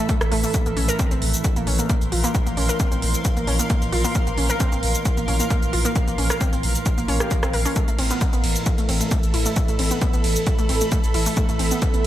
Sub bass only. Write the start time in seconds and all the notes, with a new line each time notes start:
0.21 A1
0.32 A1
0.66 A#1
0.77 A#1
1.11 A#1
1.22 A#1
1.56 A#1
1.67 A#1
2.02 A#1
2.12 A#1
2.47 A#1
2.57 A#1
2.92 A#1
3.02 A#1
3.37 A#1
3.47 A#1
3.82 A#1
3.92 A#1
4.27 A#1
4.38 A#1
4.72 A#1
4.83 A#1
5.17 A#1
5.28 A#1
5.62 A#1
5.73 A#1
6.08 A#1
6.18 A#1
6.53 A#1
6.63 A#1
6.98 A#1
7.08 A#1
7.43 A#1
7.53 A#1
7.88 A1
7.99 A1
8.33 A1
8.44 A1
8.78 A1
8.89 A1
9.23 A1
9.34 A1
9.68 A1
9.79 A1
10.14 A1
10.24 A1
10.59 A1
10.69 A1
11.04 A1
11.14 A1
11.49 A1
11.60 A1
11.94 A1